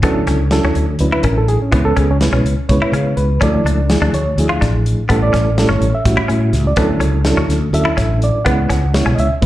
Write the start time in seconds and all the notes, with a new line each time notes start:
0.02 D2 F#3 B3 C#4 D4 E4 A4, kick, closed hi-hat
0.27 C#2 C#4, snare, closed hi-hat
0.51 F#3 C#4 D4 E4 A4, snare, closed hi-hat
0.64 D2 C#4
0.75 D2, closed hi-hat
0.99 D2 F#3 C#4 D4 E4 B4, closed hi-hat
1.12 E4 B4
1.23 A1 C#4 A#4, kick, closed hi-hat
1.38 A4
1.48 G#4, closed hi-hat
1.61 C#4, muted fretless electric bass stroke
1.71 C#2 G#3 B3 C#4 E4 B4, kick, closed hi-hat
1.85 A4
1.97 C#2 C#4 G#4, kick, closed hi-hat
2.11 C#4
2.21 G#3 B3 C#4 E4 B4, snare, closed hi-hat
2.32 B1 C#4
2.44 C#2, closed hi-hat
2.69 C#2 G#3 B3 C#4 E4 B4 C#5, kick, closed hi-hat
2.82 E4
2.92 C#3 C#4, closed hi-hat
3.17 C#2 B4, closed hi-hat
3.41 D2 F3 A3 C#4 D4 E4 A4 D5, kick, closed hi-hat
3.64 C#2 D4, closed hi-hat
3.90 F3 A3 D4 E4 G#4, snare, closed hi-hat
4.01 D2 D4
4.13 D2 C#5, closed hi-hat
4.38 D2 F3 A3 D4 E4 G#4, closed hi-hat
4.49 F4
4.61 A1 D4, kick, snare, closed hi-hat
4.86 closed hi-hat
4.98 muted fretless electric bass stroke
5.09 A1 G3 A3 B3 C#4 E4 A4, kick, closed hi-hat
5.23 D5
5.33 A1 C#4, kick, snare, closed hi-hat
5.58 G3 A3 C#4 E4 A4, snare, closed hi-hat
5.69 G1 C#4 C#5
5.81 A1, closed hi-hat
5.95 E5
6.05 A1 G3 A3 C#4 E4 F#4, kick, snare, closed hi-hat
6.17 E4
6.28 A2 C#4, closed hi-hat
6.53 C#2, snare, closed hi-hat
6.67 D5
6.76 D2 F#3 B3 C#4 D4 E4 A4, kick, closed hi-hat
7.00 C#2 C#4, closed hi-hat
7.25 F#3 C#4 D4 E4 A4, snare, closed hi-hat
7.37 D2 C#4
7.49 D2, snare, closed hi-hat
7.73 D2 F#3 C#4 D4 E4 A4 E5, closed hi-hat
7.85 E4
7.97 A1 C#4, kick, snare, closed hi-hat
8.22 D5, closed hi-hat
8.35 muted fretless electric bass stroke
8.45 C#2 G#3 B3 C#4 E4 B4 F#5, kick, closed hi-hat
8.70 C#2 C#4, kick, snare, closed hi-hat
8.94 G#3 B3 C#4 E4 C#5, snare, closed hi-hat
9.06 B1 C#4
9.15 C#2 D#5, closed hi-hat
9.20 E5
9.42 C#2 G#3 B3 C#4 E4 B4, kick, closed hi-hat